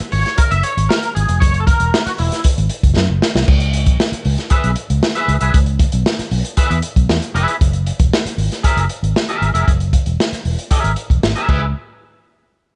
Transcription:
0.00 muted fingered electric bass stroke, closed hi-hat
0.12 G#1 C#5, open hi-hat
0.26 snare, closed hi-hat
0.38 A#4, kick, closed hi-hat
0.51 F#1 E5, closed hi-hat
0.63 C#5, closed hi-hat
0.77 G#1, closed hi-hat
0.89 A#4, snare
1.03 closed hi-hat
1.15 G#1 G#4, closed hi-hat
1.29 F1, closed hi-hat
1.40 F#1 C#5, kick, closed hi-hat
1.54 closed hi-hat
1.60 A4
1.67 A#4, kick, closed hi-hat
1.80 E1, closed hi-hat
1.94 snare
2.06 F#4, muted fingered electric bass stroke, snare, closed hi-hat
2.18 E1 E4, open hi-hat
2.32 snare, closed hi-hat
2.44 kick, closed hi-hat
2.58 G#1, closed hi-hat
2.69 closed hi-hat
2.83 F#1, kick, closed hi-hat
2.96 F#2, snare
3.10 F#1
3.22 snare
3.35 C2, snare
3.48 C#2, kick, crash
3.60 closed hi-hat
3.73 closed hi-hat
3.86 B1, kick, closed hi-hat
4.00 snare
4.12 muted fingered electric bass stroke, closed hi-hat
4.25 C#2, open hi-hat
4.38 snare, closed hi-hat
4.50 G#4 B4 E5, kick, closed hi-hat
4.64 B1, closed hi-hat
4.76 closed hi-hat
4.90 C#2, closed hi-hat
5.03 snare
5.15 G#4 B4 E5, closed hi-hat
5.28 C#2, closed hi-hat
5.41 C2 G#4 B4 E5, closed hi-hat
5.54 C#2, kick, closed hi-hat
5.66 closed hi-hat
5.79 kick, closed hi-hat
5.92 B1, closed hi-hat
6.06 snare
6.19 muted fingered electric bass stroke, snare, closed hi-hat
6.31 B1, open hi-hat
6.44 closed hi-hat
6.57 G#4 B4 E5, kick, closed hi-hat
6.71 E2, closed hi-hat
6.82 closed hi-hat
6.96 B1, kick, closed hi-hat
7.09 E2, snare
7.22 closed hi-hat
7.34 F1 G#4 B4 E5, closed hi-hat
7.48 closed hi-hat
7.61 F#1, kick, closed hi-hat
7.73 closed hi-hat
7.86 closed hi-hat
7.99 E1, kick, closed hi-hat
8.13 snare
8.25 muted fingered electric bass stroke, snare, closed hi-hat
8.38 G#1, open hi-hat
8.52 snare, closed hi-hat
8.63 G#4 A#4 E5, kick, closed hi-hat
8.77 F#1, closed hi-hat
8.89 closed hi-hat
9.03 G#1, closed hi-hat
9.16 snare
9.29 G#4 A#4 E5, closed hi-hat
9.42 G#1, closed hi-hat
9.54 F1 G#4 A#4 E5, closed hi-hat
9.68 F#1, kick, closed hi-hat
9.80 closed hi-hat
9.93 kick, closed hi-hat
10.06 E1, closed hi-hat
10.20 snare
10.33 muted fingered electric bass stroke, snare, closed hi-hat
10.45 E1, open hi-hat
10.59 closed hi-hat
10.71 G#4 A#4 E5, kick, closed hi-hat
10.84 G#1, closed hi-hat
10.96 closed hi-hat
11.10 E1, kick, closed hi-hat
11.23 G#1, snare
11.35 G#4 A#4 E5, closed hi-hat
11.48 C#2 G#4 B4 E5, kick, crash

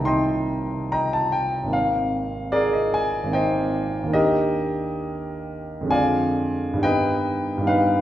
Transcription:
Already playing: C2 D#3 C4 D#4 C5 D#5 G5 A5 A#5
0.00 A#3 C4
0.05 D#4 D#5 G5 C6
0.92 D#5 G5 A#5
1.13 A5
1.32 G5
1.64 G#1 D#3
1.68 A#3 C4
1.72 D#4 F5
2.52 G#4 A#4 D5
2.73 D#5
2.94 G#5
3.24 G#1 D#3
3.28 A#3 C4
3.32 D#4 C5 D#5 G5
4.03 D#2 D#3
4.08 A#3 D4
4.13 G4 A#4 D#5
5.81 F2 D3
5.86 G#3 C4 F4
5.91 D5 F5 G#5
6.73 G2 D#3
6.77 G3 B3
6.82 D#4 B4 D#5 G5
7.58 G2 D#3
7.62 G3 B3
7.67 D#4 B4 F5

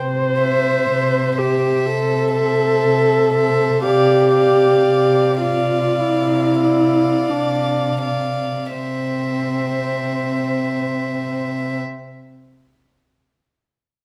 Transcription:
Already playing: C3 C5
0.41 C5 E5
0.90 C3
1.37 G4 C5 E5
1.86 C3 A4
2.34 C5 E5
2.84 C3
3.33 C5 E5
3.83 C3 G4 D5 F5
4.35 D5 F5
4.88 C3
5.41 F4 D5 F5
5.99 C3 E4
6.61 D5 F5
7.29 C3 D4
8.02 D5 F5
8.73 C3 C4 C5 E5

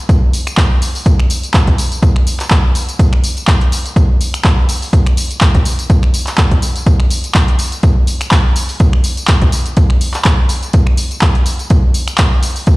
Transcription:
0.09 kick, closed hi-hat, tambourine
0.33 open hi-hat, tambourine
0.47 finger snap, closed hi-hat, tambourine
0.57 kick, clap, closed hi-hat, tambourine
0.82 open hi-hat, tambourine
0.95 open hi-hat, tambourine
1.06 kick, closed hi-hat, tambourine
1.20 finger snap
1.30 open hi-hat, tambourine
1.43 closed hi-hat, tambourine
1.54 kick, clap, closed hi-hat, tambourine
1.67 kick, closed hi-hat
1.78 open hi-hat, tambourine
1.92 closed hi-hat, tambourine
2.03 kick, closed hi-hat, tambourine
2.16 finger snap
2.27 open hi-hat, tambourine
2.40 clap, closed hi-hat, tambourine
2.51 kick, clap, closed hi-hat, tambourine
2.75 open hi-hat, tambourine
2.89 closed hi-hat, tambourine
2.99 kick, closed hi-hat, tambourine
3.13 finger snap
3.24 open hi-hat, tambourine
3.37 closed hi-hat, tambourine
3.47 kick, clap, closed hi-hat, tambourine
3.61 closed hi-hat
3.72 open hi-hat, tambourine
3.86 closed hi-hat, tambourine
3.96 kick, closed hi-hat, tambourine
4.21 open hi-hat, tambourine
4.34 finger snap, closed hi-hat, tambourine
4.45 kick, clap, closed hi-hat, tambourine
4.69 open hi-hat, tambourine
4.82 open hi-hat, tambourine
4.93 kick, closed hi-hat, tambourine
5.07 finger snap, closed hi-hat
5.17 open hi-hat, tambourine
5.31 closed hi-hat, tambourine
5.41 kick, clap, closed hi-hat, tambourine
5.55 kick, closed hi-hat
5.65 open hi-hat, tambourine
5.79 closed hi-hat, tambourine
5.90 kick, closed hi-hat, tambourine
6.03 finger snap
6.14 open hi-hat, tambourine
6.27 clap, closed hi-hat, tambourine
6.38 kick, clap, closed hi-hat, tambourine
6.51 kick, closed hi-hat
6.62 open hi-hat, tambourine
6.76 closed hi-hat, tambourine
6.86 kick, closed hi-hat, tambourine
7.00 finger snap
7.11 open hi-hat, tambourine
7.24 closed hi-hat, tambourine
7.35 kick, clap, closed hi-hat
7.48 closed hi-hat
7.59 open hi-hat, tambourine
7.72 closed hi-hat, tambourine
7.83 kick, closed hi-hat, tambourine
8.07 open hi-hat, tambourine
8.21 finger snap, closed hi-hat, tambourine
8.31 kick, clap, closed hi-hat, tambourine
8.56 open hi-hat, tambourine
8.69 open hi-hat, tambourine
8.80 kick, closed hi-hat, tambourine
8.93 finger snap
9.04 open hi-hat, tambourine
9.17 closed hi-hat, tambourine
9.28 kick, clap, closed hi-hat
9.42 kick, closed hi-hat
9.52 open hi-hat, tambourine
9.66 closed hi-hat, tambourine
9.77 kick, closed hi-hat, tambourine
9.90 finger snap
10.01 open hi-hat, tambourine
10.14 clap, closed hi-hat, tambourine
10.25 kick, clap, closed hi-hat, tambourine
10.49 open hi-hat, tambourine
10.63 closed hi-hat, tambourine
10.73 kick, closed hi-hat, tambourine
10.87 finger snap
10.97 open hi-hat, tambourine
11.11 closed hi-hat, tambourine
11.21 kick, clap, closed hi-hat, tambourine
11.35 closed hi-hat
11.46 open hi-hat, tambourine
11.59 closed hi-hat, tambourine
11.70 kick, closed hi-hat, tambourine
11.94 open hi-hat, tambourine
12.08 finger snap, closed hi-hat, tambourine
12.18 kick, clap, closed hi-hat, tambourine
12.43 open hi-hat, tambourine
12.56 open hi-hat, tambourine
12.67 kick, closed hi-hat, tambourine

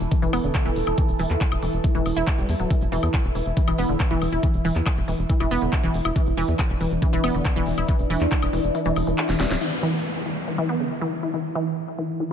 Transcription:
Already playing: E3 A4
0.01 E1, closed hi-hat, cabasa
0.11 E3, kick, closed hi-hat, cabasa
0.22 E1 E3, closed hi-hat, cabasa
0.33 E1 B3, open hi-hat, cabasa, high woodblock
0.44 E1 D3, closed hi-hat, cabasa
0.54 kick, clap, closed hi-hat, cabasa
0.65 E1 E3, closed hi-hat, cabasa
0.75 E1, open hi-hat, cabasa
0.87 E1 E4, cabasa, high woodblock
0.97 E3, kick, closed hi-hat, cabasa
1.09 E1, closed hi-hat, cabasa
1.19 E1 E3, open hi-hat, cabasa
1.30 E2, clap, closed hi-hat, cabasa
1.41 kick, clap, closed hi-hat, cabasa
1.52 E1, closed hi-hat, high woodblock
1.62 E1 E3, open hi-hat, cabasa
1.72 E1, closed hi-hat, cabasa
1.84 E3, kick, closed hi-hat, cabasa
1.95 E1 E3, closed hi-hat, cabasa
2.06 E1, open hi-hat, cabasa, high woodblock
2.17 E1 E4, closed hi-hat, cabasa
2.27 kick, clap, closed hi-hat, cabasa
2.38 E1 G3, closed hi-hat, cabasa
2.49 E2, open hi-hat, cabasa
2.60 D1 F#3, closed hi-hat, cabasa
2.70 E3 E4, kick, closed hi-hat, cabasa
2.81 E1, closed hi-hat, cabasa
2.92 E1 E3, open hi-hat, cabasa
3.03 E2, closed hi-hat, cabasa, high woodblock
3.14 kick, clap, closed hi-hat, cabasa
3.24 E1, closed hi-hat
3.35 E1 E3, open hi-hat, cabasa
3.46 E1, closed hi-hat, cabasa
3.57 E3, kick, closed hi-hat, cabasa
3.68 E1 E3, closed hi-hat, cabasa, high woodblock
3.78 E1 B3, open hi-hat, cabasa
3.89 E1 D3, closed hi-hat, cabasa
4.00 kick, clap, closed hi-hat, cabasa
4.11 E1 E3, closed hi-hat, cabasa
4.21 E1, open hi-hat, cabasa, high woodblock
4.32 E1 E4, closed hi-hat, cabasa
4.42 E3, kick, closed hi-hat, cabasa
4.54 E1, closed hi-hat, cabasa
4.65 E1 E3, open hi-hat, cabasa
4.76 E2, clap, closed hi-hat, cabasa
4.86 kick, clap, closed hi-hat, cabasa, high woodblock
4.97 E1, closed hi-hat
5.08 E1 E3, open hi-hat, cabasa
5.19 E1, closed hi-hat, cabasa
5.29 E3, kick, closed hi-hat, cabasa
5.40 E1 E3, closed hi-hat, cabasa, high woodblock
5.51 E1 B3, open hi-hat, cabasa
5.62 E1 D3, closed hi-hat, cabasa
5.73 kick, clap, closed hi-hat, cabasa
5.83 E1 E3, closed hi-hat, cabasa
5.94 E1, open hi-hat, cabasa
6.05 E1 E4, closed hi-hat, cabasa, high woodblock
6.16 E3 D4, kick, closed hi-hat, cabasa
6.27 E1, closed hi-hat, cabasa
6.37 E1 E3, open hi-hat, cabasa
6.48 E2, closed hi-hat, cabasa
6.59 kick, clap, closed hi-hat, cabasa, high woodblock
6.70 E1, closed hi-hat
6.81 E1 E3, open hi-hat, cabasa
6.91 E1, closed hi-hat, cabasa
7.02 E3, kick, closed hi-hat, cabasa
7.13 E1 E3, closed hi-hat, cabasa
7.24 E1 B3, open hi-hat, cabasa, high woodblock
7.35 E1 D3, closed hi-hat, cabasa
7.45 kick, clap, closed hi-hat, cabasa
7.56 E1 E3, closed hi-hat, cabasa
7.66 E1, open hi-hat, cabasa
7.78 E1 E4, closed hi-hat, cabasa, high woodblock
7.88 E3, kick, closed hi-hat, cabasa
7.99 E1, closed hi-hat, cabasa
8.10 E1 E3, open hi-hat, cabasa
8.20 E2, clap, cabasa
8.32 kick, clap, closed hi-hat, cabasa
8.42 E1, closed hi-hat, cabasa, high woodblock
8.53 E1 E3, open hi-hat, cabasa
8.64 E1, closed hi-hat, cabasa
8.75 E3, closed hi-hat, cabasa
8.85 E1 E3, closed hi-hat, cabasa
8.96 E1, open hi-hat, cabasa, high woodblock
9.07 E1 E3, closed hi-hat, cabasa
9.18 clap, closed hi-hat, cabasa
9.29 E1 E3, snare, closed hi-hat, cabasa
9.40 E1 G3, snare, open hi-hat, cabasa
9.50 D1 F#3, snare, closed hi-hat, cabasa
9.61 E3 E4, crash, downlifter
9.83 E3
10.26 E3
10.48 E3
10.58 E3
10.69 B3
10.80 D3
11.01 E3
11.23 E4
11.34 E3
11.55 E3
11.99 E3
12.20 E3

